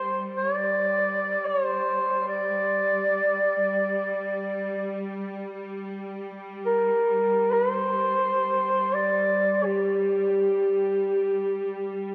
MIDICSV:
0, 0, Header, 1, 3, 480
1, 0, Start_track
1, 0, Key_signature, -2, "minor"
1, 0, Tempo, 500000
1, 11662, End_track
2, 0, Start_track
2, 0, Title_t, "Duduk"
2, 0, Program_c, 0, 69
2, 0, Note_on_c, 0, 72, 71
2, 305, Note_off_c, 0, 72, 0
2, 356, Note_on_c, 0, 73, 80
2, 529, Note_off_c, 0, 73, 0
2, 529, Note_on_c, 0, 74, 80
2, 1400, Note_on_c, 0, 73, 70
2, 1414, Note_off_c, 0, 74, 0
2, 1582, Note_off_c, 0, 73, 0
2, 1582, Note_on_c, 0, 72, 70
2, 2187, Note_off_c, 0, 72, 0
2, 2193, Note_on_c, 0, 74, 76
2, 4950, Note_off_c, 0, 74, 0
2, 6393, Note_on_c, 0, 70, 77
2, 7225, Note_on_c, 0, 71, 87
2, 7240, Note_off_c, 0, 70, 0
2, 7398, Note_off_c, 0, 71, 0
2, 7398, Note_on_c, 0, 72, 87
2, 8583, Note_on_c, 0, 74, 88
2, 8597, Note_off_c, 0, 72, 0
2, 9266, Note_on_c, 0, 67, 70
2, 9280, Note_off_c, 0, 74, 0
2, 11662, Note_off_c, 0, 67, 0
2, 11662, End_track
3, 0, Start_track
3, 0, Title_t, "String section"
3, 0, Program_c, 1, 48
3, 0, Note_on_c, 1, 55, 39
3, 11662, Note_off_c, 1, 55, 0
3, 11662, End_track
0, 0, End_of_file